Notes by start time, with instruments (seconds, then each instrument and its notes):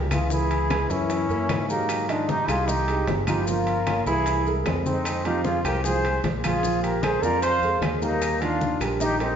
Already playing: fingered electric bass C#2
0.10 upright piano E3 E4 E5, trombone F4, flute G#4, high bongo, high conga, high timbale, claves, maracas
0.30 upright piano E3 E4 E5, trombone E4, flute G#4, high bongo, high conga, maracas
0.51 high conga, high timbale, maracas
0.70 upright piano G#3 G#4 B4, high bongo, high conga, high timbale, low timbale, claves, maracas
0.90 fingered electric bass F#2, upright piano E3 E4 E5, trombone C#4, flute E4, high bongo, high conga, maracas
1.10 high bongo, high conga, high timbale, maracas
1.29 fingered electric bass F#2, upright piano A#3 A#4 C#5, high bongo, high conga, maracas
1.49 fingered electric bass G#2, high bongo, low bongo, high conga, high timbale, low timbale, claves, maracas
1.69 upright piano F#3 G4 G#4, trombone A#3, flute D#4, high bongo, maracas
1.89 high bongo, high conga, high timbale, claves, maracas
2.08 upright piano D#3 D#4 D#5, trombone D4, flute F4, high conga, high timbale, maracas
2.28 trombone D#4, flute G4, high bongo, high conga, low timbale, maracas
2.48 fingered electric bass C2, upright piano G3 G4 G#4, trombone F4, flute G#4, high bongo, high conga, high timbale, claves, maracas
2.68 upright piano D#3 D#4 D#5, trombone D#4, flute G4, high bongo, high conga, maracas
2.88 upright piano G#3 G4 G#4, high bongo, high conga, high timbale, maracas
3.07 fingered electric bass G1, high bongo, low bongo, high conga, high timbale, low timbale, maracas
3.27 upright piano F3 F4 F5, trombone D#4, flute G4, high bongo, high conga, high timbale, claves, maracas
3.40 trombone E4, flute G4
3.46 upright piano F3 F4, trombone F4, flute A#4, high bongo, high conga, maracas
3.67 high conga, high timbale, maracas
3.87 upright piano A#3 A#4 C#5, high bongo, high conga, high timbale, low timbale, claves, maracas
4.06 fingered electric bass C2, upright piano E3 E4 E5, trombone E4, flute G#4, high bongo, high conga, maracas
4.26 high bongo, high conga, high timbale, maracas
4.46 upright piano G#3 G#4 A#4, high bongo, high conga, maracas
4.65 fingered electric bass F2, high bongo, low bongo, high conga, high timbale, low timbale, claves, maracas
4.84 upright piano G#3 G#4 C5, trombone C4, flute D#4, high bongo, high conga, maracas
5.05 high bongo, high conga, high timbale, claves, maracas
5.25 upright piano F3 F4 F5, trombone D#4, flute G4, high conga, high timbale, maracas
5.44 trombone F4, flute G#4, high bongo, high conga, low timbale, maracas
5.64 fingered electric bass C2, upright piano G#3 G#4 C5, trombone G4, flute A#4, high bongo, high conga, high timbale, claves, maracas
5.83 upright piano F3 F4 F5, trombone G#4, flute C5, high bongo, high conga, maracas
6.04 upright piano G#3 G#4 C5, high bongo, high conga, high timbale, maracas
6.24 fingered electric bass A#1, high bongo, low bongo, high conga, high timbale, low timbale, maracas
6.44 upright piano F3 F4 F5, trombone F4, flute G#4, high bongo, high conga, high timbale, claves, maracas
6.63 upright piano F3 F4 F5, high bongo, high conga, maracas
6.83 trombone G4, flute A#4, high conga, high timbale, maracas
7.03 upright piano G#3 G#4 A#4, trombone G#4, flute C5, high bongo, high conga, high timbale, low timbale, claves, maracas
7.22 fingered electric bass F2, upright piano F3 F4 F5, trombone A#4, flute D5, high bongo, high conga, maracas
7.42 trombone C5, flute F5, high bongo, high conga, high timbale, maracas
7.62 fingered electric bass F2, upright piano G#3 G#4 A#4, high bongo, high conga, maracas
7.81 fingered electric bass D#2, high bongo, low bongo, high conga, high timbale, low timbale, claves, maracas
8.02 upright piano G3 G4 A#4, trombone A#3, flute D#4, high bongo, maracas
8.22 high bongo, high conga, high timbale, claves, maracas
8.41 upright piano D#3 F4 F5, trombone D4, flute F4, high conga, high timbale, maracas
8.61 high bongo, high conga, low timbale, maracas
8.80 fingered electric bass A#1, upright piano G3 G4 A#4, high bongo, high conga, high timbale, claves, maracas
9.00 upright piano D#3 D#4 D#5, trombone D#4, flute G4, high bongo, high conga, maracas
9.20 upright piano G3 G4 A#4, trombone C4, flute D#4, high bongo, high conga, high timbale, maracas